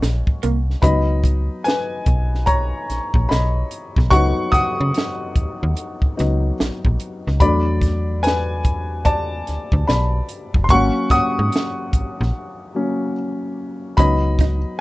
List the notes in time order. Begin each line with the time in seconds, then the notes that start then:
Already playing: F#3 A#3 C#4
0.02 A#1, snare, closed hi-hat
0.27 kick
0.43 C2 A#3, closed hi-hat
0.70 snare
0.82 C#2 F#3 B3 D#4 D#5 B5, kick, closed hi-hat
1.24 kick, closed hi-hat
1.64 B4 G#5, snare, closed hi-hat
2.06 B1, kick, closed hi-hat
2.35 snare
2.46 C#5 A#5, kick, closed hi-hat
2.90 A#1, snare, closed hi-hat
3.14 A#1, kick
3.29 B1 D#5 B5, snare, closed hi-hat
3.71 closed hi-hat
3.96 B1, kick, snare
4.11 C#2 F#3 B3 D#4 F#5 C#6, kick, closed hi-hat
4.52 C#3 F#5 D#6, kick, closed hi-hat
4.57 snare
4.81 C#3
4.94 snare, closed hi-hat
5.36 D#2, kick, closed hi-hat
5.63 D#2
5.77 closed hi-hat
6.02 C#2, kick
6.17 C#2 F#3 B3 D#4, snare, closed hi-hat
6.60 A#1, snare, closed hi-hat
6.85 A#1, kick
7.00 closed hi-hat
7.27 C#2, snare
7.40 E2 F#3 A3 D4 D5 B5, kick, closed hi-hat
7.82 kick, snare, closed hi-hat
8.23 B4 G#5, closed hi-hat
8.27 snare
8.65 kick, closed hi-hat
9.05 D5 A5, kick, closed hi-hat
9.47 D2, snare, closed hi-hat
9.72 D2, kick
9.88 B1 D5 B5, snare, closed hi-hat
10.29 closed hi-hat
10.54 F#1, kick
10.64 C6
10.69 G#1 F#3 A#3 C#4 F#5 C#6, kick, closed hi-hat
11.10 G#2 F#5 D#6, kick, snare, closed hi-hat
11.39 G#2
11.52 snare, closed hi-hat
11.93 A#1, kick, closed hi-hat
12.21 A#1, snare
12.75 F#3 A#3 C#4
13.97 C#2 F#3 B3 C#4 D#4 D#5 B5, kick, closed hi-hat
14.39 D#4, kick, snare, closed hi-hat